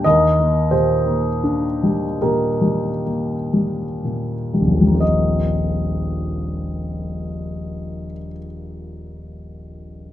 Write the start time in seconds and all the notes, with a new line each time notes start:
0.04 D#2 A#4 D#5
0.39 A#3
0.71 A#2 G4 C5
1.06 A#3
1.44 D4
1.83 G3
2.22 A#2 G4 A#4
2.61 G3
3.05 A#3
3.53 G3
4.04 A#2
4.54 G3
4.61 D#1
4.67 A#1
4.73 F3
4.81 G3
4.87 A#3
4.94 C4
5.00 D#5